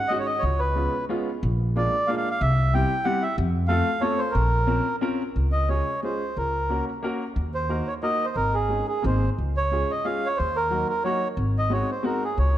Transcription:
Already playing: F#5
0.08 G#3 C#4 D#4 F#4 D#5
0.19 C#5
0.26 D#5
0.39 C#5
0.43 C#2
0.59 B4
0.75 G#3 B3 C#4 F4
1.09 G#3 B3 C#4 F4
1.43 A#1
1.76 G#3 A#3 D4 F4 D5
2.07 G#3 A#3 D4 F4 F5
2.17 F5
2.31 F5
2.41 C2 E5
2.73 G3 C4 E4 G4 G5
3.05 G3 C4 E4 G4 F#5
3.23 E5
3.38 F2
3.68 A3 C4 F4 A4 F5
4.01 A3 C4 F4 A4 C#5
4.18 C5
4.31 A#1 A#4
4.67 C4 C#4 F4 A#4
5.01 C4 C#4 F4 A#4
5.36 C#2
5.52 D#5
5.69 G#3 C#4 F4 G#4 C#5
6.03 G#3 C#4 F4 G#4 C5
6.37 C#2 A#4
6.69 A#3 C#4 F#4 A#4
7.03 A#3 C#4 F#4 A#4
7.36 D#2
7.54 C5
7.69 A#3 D#4 F#4 A#4
7.87 C#5
8.03 A#3 D#4 F#4 A#4 D#5
8.24 C5
8.36 G#1 A#4
8.54 G#4
8.69 G#3 C#4 D#4 G#4
8.88 G#4
9.02 G#1 A#3 C4 D#4 G#4 C5
9.38 C#2
9.57 C#5
9.71 G#3 C#4 F4 G#4
9.91 D#5
10.05 G#3 C#4 F4 G#4 F5
10.26 C#5
10.37 D#2 C5
10.56 A#4
10.70 F#3 A#3 D#4 F#4
10.89 A#4
11.04 F#3 A#3 D#4 F#4 C#5
11.37 G#1
11.58 D#5
11.70 G#3 C4 D#4 F#4 C#5
11.91 C5
12.03 G#3 C4 D#4 F#4 A#4
12.24 G#4
12.38 C#2 C#5

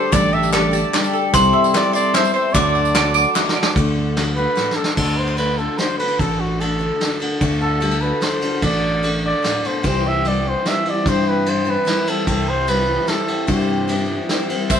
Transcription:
Already playing: D2 D3 G3 A3 D4 G4 A4 C5 D5 E5 A5 D6
0.11 A1 D2 D3 G3 A3 D4 G4 A4 D5, kick, clap, closed hi-hat, tambourine
0.24 tambourine
0.33 D5 E5
0.43 clap, tambourine
0.52 G3 A3 D4 G4 A4 D5, snare, clap, closed hi-hat
0.71 D4 G4 A4 A5, tambourine
0.93 G3 A3 D4 G4 A4 D5, snare, clap, closed hi-hat
1.04 tambourine
1.13 A4, tambourine
1.32 C2 C3 E3 G3 C4 E4 A4 C5 C6, kick, clap, closed hi-hat, tambourine
1.44 tambourine
1.53 E5
1.64 clap, tambourine
1.74 G3 C4 E4 A4 C5 D5, snare, clap, closed hi-hat
1.93 G3 C4 E4 A4 D5 C6, tambourine
2.13 G3 B3 C4 E4 A4 C5 E5, snare, clap, closed hi-hat
2.18 A4
2.24 tambourine
2.34 C5, tambourine
2.53 D2 D3 F#3 A3 D4 F#4 A4 D5 D6, kick, clap, closed hi-hat, tambourine
2.66 clap
2.75 F#5, clap, tambourine
2.85 tambourine
2.94 F#3 A3 D4 F#4 A4 D5, snare, clap, closed hi-hat
3.05 tambourine
3.14 F#5 D6, tambourine
3.34 F#3 A3 D4 A4 D5 E5 F#5, snare, clap, tambourine
3.38 D4 F#4 A4
3.46 snare, clap
3.56 D5
3.63 snare, tambourine
3.67 clap
3.76 D2 D3 A3 D4 F#4 A4, kick, ride
3.98 D4
4.16 D3 A3 D4 F#4 A4, snare, ride
4.36 A3 D4 F#4 A4 B4
4.55 A2 A3 D4 F#4 A4, snare
4.71 snare
4.76 A3 D4 F#4 A4
4.84 snare
4.97 D2 D3 A3 D4 F#4 A4, kick, crash
5.17 B3 C5
5.28 D4
5.37 A3 D4 F#4 A4 B4, ride
5.58 D3 D4 F#4 A4
5.78 A3 D4 F#4 A4 C5, snare, ride
5.99 B3 D4 F#4 A4 B4, ride
6.08 D4
6.19 A1 D2 D3 A3 D4 F#4 A4, kick, ride
6.39 D4 F#4
6.60 A3 D4 F#4 A4, ride
6.79 D3 D4 F#4 A4
7.01 A3 D4 F#4 A4, snare, ride
7.20 D4 F#4 A4, ride
7.41 D2 D3 A3 D4 F#4 A4, kick, ride
7.61 D4 A4
7.80 G3 A3 D4 F#4 A4, ride
7.91 A3
8.01 D3 D4 F#4 A4 B4
8.21 A3 D4 F#4 A4 C5, snare, ride
8.41 D4 F#4 A4, ride
8.62 A1 D2 D3 A3 D4 F#4 A4 D5, kick, ride
8.84 D4
9.03 A3 D4 F#4 A4, ride
9.24 D3 D4 D5
9.42 A2 A3 D4 F#4 A4, snare, ride
9.64 B2 C5, ride
9.83 C2 C3 E3 G3 C4 E4 C5, kick, ride
10.05 C4 E5
10.25 G3 C4 E4 C5 D5, ride
10.45 E3 C4 C5
10.65 G3 C4 E4 C5 E5, snare, ride
10.85 C4 E4 C5, ride
10.90 G3 D5
11.05 G2 C3 E3 G3 C4 E4 C5, kick, ride
11.26 C4 B4
11.46 G3 C4 E4 C5, ride
11.65 E3 G3 C4 E4 C5
11.70 B4
11.85 G3 C4 E4 C5, snare, ride
12.06 G3 C4 E4 A4 C5, ride
12.27 C2 C3 E3 G3 C4 E4 A4 C5, kick, ride
12.49 C4 C5
12.67 G3 C4 E4 B4, ride
12.89 E3 C4
13.07 G3 C4 E4 A4 C5, snare, ride
13.28 C4, ride
13.47 G2 C3 E3 G3 C4 E4 G4 C5, kick, ride
13.70 C4
13.88 G3 C4 E4 C5, ride
14.10 E3 C4
14.29 G3 C4 E4 C5, snare, ride
14.49 G3 C4 E4 C5, ride
14.70 C2 C3 E3 G3 C4 E4 C5 E5, kick, clap, ride, tambourine

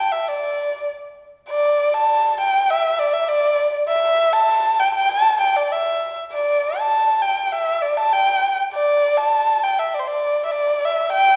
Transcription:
0.00 G5
0.12 E5
0.28 D5
1.49 D5
1.94 A5
2.41 G5
2.70 E5
2.99 D5
3.13 E5
3.28 D5
3.88 E5
4.33 A5
4.80 G5
4.94 G5
5.10 A5
5.40 G5
5.56 D5
5.72 E5
6.33 D5
6.78 A5
7.22 G5
7.46 G5
7.52 E5
7.82 D5
7.97 A5
8.13 G5
8.74 D5
9.18 A5
9.63 G5
9.79 E5
9.94 D5
9.99 C5
10.08 D5
10.45 E5
10.52 D5
10.85 E5
11.12 G5

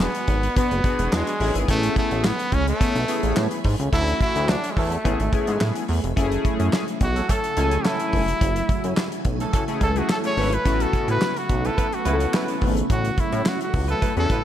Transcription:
Already playing: B3 D4 F#4 G#4 D5 F#5 G#5
0.00 B3, snare, clap
0.15 closed hi-hat
0.28 G#1, kick, closed hi-hat
0.43 closed hi-hat
0.56 B3 D4 F#4 B4, kick, closed hi-hat
0.71 F#1, closed hi-hat
0.84 B3 D4 F#4 G#4, kick, closed hi-hat
0.99 E1, closed hi-hat
1.12 E2 G#3, snare, clap
1.27 closed hi-hat
1.40 A1 A3 B3 C#4 E4 G#4 C#5 B5, open hi-hat
1.55 G#1, closed hi-hat
1.68 A1 A3, kick, closed hi-hat
1.83 closed hi-hat
1.96 A3, kick, closed hi-hat
2.11 A1, closed hi-hat
2.24 B3, snare, clap
2.39 closed hi-hat
2.52 C#2 C#4, kick, closed hi-hat
2.68 A3, closed hi-hat
2.80 B3 C#4 E4 G#4, kick, closed hi-hat
2.95 B1, closed hi-hat
3.08 B3 C#4 E4 G#4, closed hi-hat
3.23 A1, closed hi-hat
3.37 A2, snare, clap
3.51 closed hi-hat
3.64 G#2, kick, open hi-hat
3.80 C#2, closed hi-hat
3.92 D2 F#3 A3 C#4 E4 F#4 A4 C#5 E5 C#6, kick, closed hi-hat
4.08 closed hi-hat
4.21 E4, kick, closed hi-hat
4.36 D2, closed hi-hat
4.49 D4, snare, clap
4.64 closed hi-hat
4.71 G#3
4.77 E2 F#3 A3 E4 A4, kick, open hi-hat
4.92 closed hi-hat
5.04 A1 A3 B3 C#4 E4 G#4 G#5, kick, closed hi-hat
5.20 G#1, closed hi-hat
5.32 B3 C#4 E4 G#4, kick, closed hi-hat
5.47 G#2, closed hi-hat
5.61 A2, snare, clap
5.75 closed hi-hat
5.88 E2, open hi-hat
6.04 F1, closed hi-hat
6.16 F#1 C#3 F#3 A3 C#4 E4 F#4 G#4, kick, closed hi-hat
6.32 closed hi-hat
6.45 kick, closed hi-hat
6.60 F#2, closed hi-hat
6.73 snare, clap
6.88 closed hi-hat
7.01 B1 F#4, kick, closed hi-hat
7.16 E3 A3 C#4 A4, closed hi-hat
7.29 E3 A3 C#4 A4, kick, closed hi-hat
7.44 closed hi-hat
7.57 C#2 E3 A3 C#4 E4 A4 G#5, closed hi-hat
7.71 closed hi-hat
7.85 E3 A3 C#4 E4 A4, snare, clap
8.00 closed hi-hat
8.13 F1, kick, open hi-hat
8.28 closed hi-hat
8.41 F#1 G#5, kick, closed hi-hat
8.56 closed hi-hat
8.69 kick, closed hi-hat
8.84 F#2, closed hi-hat
8.97 snare, clap
9.12 closed hi-hat
9.25 B1, kick, closed hi-hat
9.40 E3 A3 C#4 A4, closed hi-hat
9.53 E3 A3 C#4 A4, kick, closed hi-hat
9.68 A3 C#4 E4 G#4, closed hi-hat
9.81 C#2 E3 A3 C#4 A4, kick, closed hi-hat
9.95 A3 C#4 E4 F#4 G#4, closed hi-hat
10.09 E3 A3 C#4 A4, snare, clap
10.24 A3 C#4 E4 G#4 C#5, closed hi-hat
10.37 G#1 A3 C#4 E4 B4, open hi-hat
10.53 B4, closed hi-hat
10.65 A1 F#3 B3 C#4 E4 F#4, kick, closed hi-hat
10.80 A4, closed hi-hat
10.93 kick, closed hi-hat
11.08 A2 B4, closed hi-hat
11.22 snare, clap
11.37 F#4, closed hi-hat
11.49 B1, kick, closed hi-hat
11.64 F#3 B3 E4 A4 B4, closed hi-hat
11.77 F#3 B3 E4 B4, kick, closed hi-hat
11.93 F#4, closed hi-hat
12.05 C#2 F#3 B3 C#4 E4 G#4 B4, closed hi-hat
12.13 A4
12.20 closed hi-hat
12.33 F#3 B3 E4 B4, snare, clap
12.48 closed hi-hat
12.61 G#1, kick, open hi-hat
12.77 closed hi-hat
12.90 A1 C#4 F#4, kick, closed hi-hat
13.05 closed hi-hat
13.18 E4, kick, closed hi-hat
13.32 A2, closed hi-hat
13.46 F#4, snare, clap
13.61 F#4, closed hi-hat
13.74 C#2, kick, open hi-hat
13.88 F#3 B3 E4 A4 B4, closed hi-hat
14.01 F#3 B3 E4 B4, kick, closed hi-hat
14.16 E2 B3 C#4 E4 F#4 A4, closed hi-hat
14.30 A1 F#3 B3 E4 B4, kick, closed hi-hat

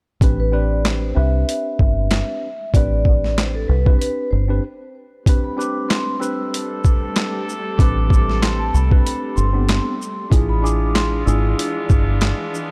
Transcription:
0.21 A1 C4 D4 G4 B4, kick, closed hi-hat
0.40 B4
0.52 C4 D4 G4 B4 D5
0.85 C5, snare, clap, closed hi-hat
1.15 C2 C4 D4 G4 B4 E5
1.49 closed hi-hat
1.79 G1, kick
2.11 snare, clap, closed hi-hat
2.74 A1 C4 D4 G4 B4 D5, kick, closed hi-hat
3.05 D5, kick
3.24 snare
3.37 C5, snare, clap, closed hi-hat
3.55 A4
3.68 C2 B4
3.85 C4 D4 G4 B4, kick
3.99 B4, closed hi-hat
4.31 G1 C5
4.49 C4 D4 G4 B4
5.26 C3 G3 A3 C4 D4 G4 B4, kick, closed hi-hat
5.44 B5
5.57 C4 D4 G4 B4 D6, shaker
5.89 C6, snare, clap, closed hi-hat
6.20 C4 D4 G4 B4 E6, shaker
6.54 D4 A4, closed hi-hat
6.84 kick, shaker
7.16 snare, clap, closed hi-hat
7.49 shaker
7.78 A1 C4 D4 G4 B4 D6, kick, closed hi-hat
8.10 D6, kick, shaker
8.30 snare
8.42 C6, snare, clap, closed hi-hat
8.59 A5
8.74 C2 B5, shaker
8.90 C4 D4 G4 B4, kick
9.05 B5, closed hi-hat
9.36 G1 C6, shaker
9.53 B3 C4 D4 G4
9.69 snare, clap, closed hi-hat
10.02 shaker
10.30 A1 E3 G#3 B3 D4 E4 F4 G#4, kick, closed hi-hat
10.49 B5
10.62 D4 E4 F4 G#4 D6, shaker
10.95 C6, snare, clap, closed hi-hat
11.26 G#1 D4 E4 F4 G#4 E6, shaker
11.59 closed hi-hat
11.90 G1, kick, shaker
12.21 snare, clap, closed hi-hat
12.54 shaker

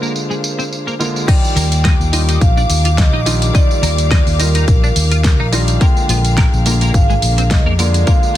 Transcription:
Already playing: D3 G#3 A#3 D4 F4 G#4 A#4 C5 F5
0.02 A#3, tambourine
0.16 tambourine
0.30 G#3, tambourine
0.44 tambourine
0.59 C4, tambourine
0.73 tambourine
0.87 A#3, tambourine
0.99 D3 G#3 A#3 F4, tambourine
1.16 tambourine
1.27 D#3 G3 D#4 F4 G4 D5 F5 G5 D6, kick, closed hi-hat, crash, tambourine
1.45 tambourine
1.56 D#2 A#3, open hi-hat, tambourine
1.72 closed hi-hat, tambourine
1.85 D#5, kick, snare, closed hi-hat, tambourine
2.00 D#2, tambourine
2.12 D#3 G3 D#4 F4, open hi-hat, tambourine
2.29 D#4, closed hi-hat, tambourine
2.41 A#1 F5, kick, closed hi-hat, tambourine
2.57 D4, tambourine
2.70 D#2, open hi-hat, tambourine
2.85 F4, closed hi-hat, tambourine
2.98 D#5, kick, snare, closed hi-hat, tambourine
3.13 A#1 D#4
3.26 D#3 G3 D4 D#4 F4, open hi-hat, tambourine
3.42 closed hi-hat, tambourine
3.53 D#3 G3 D#4 F4 D5, kick, closed hi-hat, tambourine
3.71 tambourine
3.83 D#2 A#3, open hi-hat, tambourine
3.98 closed hi-hat, tambourine
4.11 D#5, kick, snare, closed hi-hat, tambourine
4.26 D#2, open hi-hat, tambourine
4.38 D#3 G3 D#4 F4 A#4, open hi-hat, tambourine
4.55 D#4, closed hi-hat, tambourine
4.68 A#1, kick, closed hi-hat, tambourine
4.84 D4, tambourine
4.96 D#2, open hi-hat, tambourine
5.12 F4, closed hi-hat, tambourine
5.24 kick, snare, closed hi-hat, tambourine
5.40 A#1 D#4
5.52 D#3 G3 D4 D#4 F4, open hi-hat, tambourine
5.68 closed hi-hat, tambourine
5.80 D3 G#3 A#3 D4 F4 G#4 A#4 G5, kick, closed hi-hat, tambourine
5.97 tambourine
6.09 A#1 F3, open hi-hat, tambourine
6.25 closed hi-hat, tambourine
6.37 A#4, kick, snare, closed hi-hat, tambourine
6.53 A#1, tambourine
6.65 D3 G#3 A#3 F4, open hi-hat, tambourine
6.81 A#3, closed hi-hat, tambourine
6.94 G#1 F5, kick, closed hi-hat, tambourine
7.10 G#3, tambourine
7.22 A#1, open hi-hat, tambourine
7.38 C4, closed hi-hat, tambourine
7.50 D#5, kick, snare, closed hi-hat, tambourine
7.66 F2 A#3
7.79 D3 G#3 A#3 F4 D5, open hi-hat, tambourine
7.94 closed hi-hat, tambourine
8.06 D3 G#3 A#3 F4 F5, kick, closed hi-hat, tambourine
8.23 tambourine

